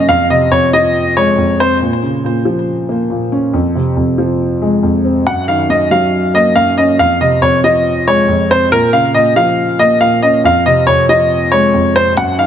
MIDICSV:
0, 0, Header, 1, 5, 480
1, 0, Start_track
1, 0, Tempo, 431655
1, 91, Time_signature, 4, 2, 24, 8
1, 13862, End_track
2, 0, Start_track
2, 0, Title_t, "Upright piano"
2, 0, Program_c, 0, 0
2, 96, Note_on_c, 0, 77, 98
2, 282, Note_off_c, 0, 77, 0
2, 337, Note_on_c, 0, 75, 81
2, 523, Note_off_c, 0, 75, 0
2, 573, Note_on_c, 0, 73, 84
2, 760, Note_off_c, 0, 73, 0
2, 816, Note_on_c, 0, 75, 93
2, 1265, Note_off_c, 0, 75, 0
2, 1298, Note_on_c, 0, 73, 79
2, 1746, Note_off_c, 0, 73, 0
2, 1782, Note_on_c, 0, 72, 85
2, 1965, Note_off_c, 0, 72, 0
2, 5856, Note_on_c, 0, 78, 96
2, 6042, Note_off_c, 0, 78, 0
2, 6095, Note_on_c, 0, 77, 86
2, 6281, Note_off_c, 0, 77, 0
2, 6339, Note_on_c, 0, 75, 80
2, 6523, Note_off_c, 0, 75, 0
2, 6575, Note_on_c, 0, 77, 83
2, 7025, Note_off_c, 0, 77, 0
2, 7058, Note_on_c, 0, 75, 90
2, 7243, Note_off_c, 0, 75, 0
2, 7289, Note_on_c, 0, 77, 85
2, 7478, Note_off_c, 0, 77, 0
2, 7535, Note_on_c, 0, 75, 75
2, 7721, Note_off_c, 0, 75, 0
2, 7777, Note_on_c, 0, 77, 98
2, 7962, Note_off_c, 0, 77, 0
2, 8016, Note_on_c, 0, 75, 81
2, 8202, Note_off_c, 0, 75, 0
2, 8251, Note_on_c, 0, 73, 84
2, 8439, Note_off_c, 0, 73, 0
2, 8496, Note_on_c, 0, 75, 89
2, 8945, Note_off_c, 0, 75, 0
2, 8980, Note_on_c, 0, 73, 81
2, 9427, Note_off_c, 0, 73, 0
2, 9462, Note_on_c, 0, 72, 84
2, 9645, Note_off_c, 0, 72, 0
2, 9696, Note_on_c, 0, 70, 101
2, 9882, Note_off_c, 0, 70, 0
2, 9931, Note_on_c, 0, 77, 81
2, 10118, Note_off_c, 0, 77, 0
2, 10169, Note_on_c, 0, 75, 84
2, 10357, Note_off_c, 0, 75, 0
2, 10412, Note_on_c, 0, 77, 82
2, 10863, Note_off_c, 0, 77, 0
2, 10891, Note_on_c, 0, 75, 95
2, 11079, Note_off_c, 0, 75, 0
2, 11127, Note_on_c, 0, 77, 83
2, 11316, Note_off_c, 0, 77, 0
2, 11370, Note_on_c, 0, 75, 80
2, 11558, Note_off_c, 0, 75, 0
2, 11625, Note_on_c, 0, 77, 87
2, 11807, Note_off_c, 0, 77, 0
2, 11853, Note_on_c, 0, 75, 81
2, 12040, Note_off_c, 0, 75, 0
2, 12084, Note_on_c, 0, 73, 87
2, 12274, Note_off_c, 0, 73, 0
2, 12335, Note_on_c, 0, 75, 96
2, 12784, Note_off_c, 0, 75, 0
2, 12806, Note_on_c, 0, 73, 81
2, 13260, Note_off_c, 0, 73, 0
2, 13296, Note_on_c, 0, 72, 87
2, 13482, Note_off_c, 0, 72, 0
2, 13537, Note_on_c, 0, 78, 94
2, 13723, Note_off_c, 0, 78, 0
2, 13776, Note_on_c, 0, 77, 85
2, 13862, Note_off_c, 0, 77, 0
2, 13862, End_track
3, 0, Start_track
3, 0, Title_t, "Ambient pad"
3, 0, Program_c, 1, 92
3, 13532, Note_on_c, 1, 51, 80
3, 13862, Note_off_c, 1, 51, 0
3, 13862, End_track
4, 0, Start_track
4, 0, Title_t, "Grand piano"
4, 0, Program_c, 2, 0
4, 0, Control_c, 2, 64, 127
4, 0, Note_on_c, 2, 42, 85
4, 0, Note_on_c, 2, 54, 86
4, 0, Note_on_c, 2, 58, 82
4, 0, Note_on_c, 2, 61, 84
4, 91, Note_on_c, 2, 41, 92
4, 105, Control_c, 2, 64, 0
4, 115, Note_off_c, 2, 42, 0
4, 115, Note_off_c, 2, 58, 0
4, 116, Note_off_c, 2, 54, 0
4, 116, Note_off_c, 2, 61, 0
4, 274, Control_c, 2, 64, 127
4, 328, Note_on_c, 2, 48, 78
4, 553, Note_off_c, 2, 41, 0
4, 569, Note_on_c, 2, 41, 78
4, 816, Note_on_c, 2, 53, 80
4, 1295, Note_on_c, 2, 56, 91
4, 1513, Note_off_c, 2, 41, 0
4, 1529, Note_on_c, 2, 41, 78
4, 1530, Note_off_c, 2, 48, 0
4, 1772, Note_on_c, 2, 60, 88
4, 2010, Note_off_c, 2, 41, 0
4, 2011, Note_on_c, 2, 46, 87
4, 2012, Note_off_c, 2, 60, 0
4, 2013, Note_off_c, 2, 56, 0
4, 2014, Note_off_c, 2, 53, 0
4, 2026, Control_c, 2, 64, 0
4, 2210, Control_c, 2, 64, 127
4, 2253, Note_on_c, 2, 49, 85
4, 2476, Note_off_c, 2, 46, 0
4, 2493, Note_on_c, 2, 46, 77
4, 2727, Note_on_c, 2, 53, 87
4, 3213, Note_on_c, 2, 58, 80
4, 3432, Note_off_c, 2, 46, 0
4, 3449, Note_on_c, 2, 46, 80
4, 3452, Note_off_c, 2, 49, 0
4, 3693, Note_on_c, 2, 61, 84
4, 3929, Note_off_c, 2, 53, 0
4, 3930, Note_off_c, 2, 46, 0
4, 3930, Note_on_c, 2, 41, 90
4, 3932, Note_off_c, 2, 58, 0
4, 3932, Note_off_c, 2, 61, 0
4, 3944, Control_c, 2, 64, 0
4, 4168, Control_c, 2, 64, 127
4, 4173, Note_on_c, 2, 48, 81
4, 4393, Note_off_c, 2, 41, 0
4, 4409, Note_on_c, 2, 41, 79
4, 4649, Note_on_c, 2, 53, 84
4, 5135, Note_on_c, 2, 56, 87
4, 5353, Note_off_c, 2, 41, 0
4, 5369, Note_on_c, 2, 41, 83
4, 5372, Note_off_c, 2, 48, 0
4, 5609, Note_on_c, 2, 60, 83
4, 5850, Note_off_c, 2, 41, 0
4, 5850, Note_off_c, 2, 60, 0
4, 5851, Note_off_c, 2, 53, 0
4, 5853, Note_off_c, 2, 56, 0
4, 5855, Note_on_c, 2, 42, 90
4, 5864, Control_c, 2, 64, 0
4, 6061, Control_c, 2, 64, 127
4, 6088, Note_on_c, 2, 51, 74
4, 6314, Note_off_c, 2, 42, 0
4, 6331, Note_on_c, 2, 42, 81
4, 6573, Note_on_c, 2, 54, 82
4, 7052, Note_on_c, 2, 58, 85
4, 7275, Note_off_c, 2, 42, 0
4, 7290, Note_off_c, 2, 51, 0
4, 7292, Note_on_c, 2, 42, 83
4, 7534, Note_on_c, 2, 61, 85
4, 7771, Note_on_c, 2, 41, 88
4, 7772, Note_off_c, 2, 42, 0
4, 7772, Note_off_c, 2, 54, 0
4, 7772, Note_off_c, 2, 58, 0
4, 7773, Note_off_c, 2, 61, 0
4, 7786, Control_c, 2, 64, 0
4, 7984, Control_c, 2, 64, 127
4, 8008, Note_on_c, 2, 48, 79
4, 8233, Note_off_c, 2, 41, 0
4, 8249, Note_on_c, 2, 41, 78
4, 8495, Note_on_c, 2, 53, 79
4, 8976, Note_on_c, 2, 56, 87
4, 9194, Note_off_c, 2, 41, 0
4, 9210, Note_off_c, 2, 48, 0
4, 9211, Note_on_c, 2, 41, 78
4, 9452, Note_on_c, 2, 60, 92
4, 9691, Note_off_c, 2, 41, 0
4, 9691, Note_on_c, 2, 46, 90
4, 9692, Note_off_c, 2, 60, 0
4, 9693, Note_off_c, 2, 53, 0
4, 9694, Note_off_c, 2, 56, 0
4, 9704, Control_c, 2, 64, 0
4, 9897, Control_c, 2, 64, 127
4, 9934, Note_on_c, 2, 49, 84
4, 10157, Note_off_c, 2, 46, 0
4, 10173, Note_on_c, 2, 46, 79
4, 10406, Note_on_c, 2, 53, 88
4, 10893, Note_on_c, 2, 58, 78
4, 11111, Note_off_c, 2, 46, 0
4, 11128, Note_on_c, 2, 46, 80
4, 11133, Note_off_c, 2, 49, 0
4, 11373, Note_on_c, 2, 61, 80
4, 11609, Note_off_c, 2, 53, 0
4, 11610, Note_off_c, 2, 46, 0
4, 11611, Note_on_c, 2, 41, 92
4, 11612, Note_off_c, 2, 58, 0
4, 11612, Note_off_c, 2, 61, 0
4, 11626, Control_c, 2, 64, 0
4, 11853, Note_on_c, 2, 48, 85
4, 11857, Control_c, 2, 64, 127
4, 12075, Note_off_c, 2, 41, 0
4, 12092, Note_on_c, 2, 41, 77
4, 12331, Note_on_c, 2, 53, 83
4, 12815, Note_on_c, 2, 56, 85
4, 13033, Note_off_c, 2, 41, 0
4, 13049, Note_on_c, 2, 41, 82
4, 13052, Note_off_c, 2, 48, 0
4, 13290, Note_on_c, 2, 60, 84
4, 13530, Note_off_c, 2, 41, 0
4, 13531, Note_off_c, 2, 53, 0
4, 13531, Note_off_c, 2, 60, 0
4, 13533, Note_off_c, 2, 56, 0
4, 13536, Note_on_c, 2, 42, 96
4, 13544, Control_c, 2, 64, 0
4, 13763, Control_c, 2, 64, 127
4, 13768, Note_on_c, 2, 51, 76
4, 13862, Note_off_c, 2, 42, 0
4, 13862, Note_off_c, 2, 51, 0
4, 13862, End_track
5, 0, Start_track
5, 0, Title_t, "Drums"
5, 13531, Note_on_c, 9, 42, 74
5, 13643, Note_off_c, 9, 42, 0
5, 13862, End_track
0, 0, End_of_file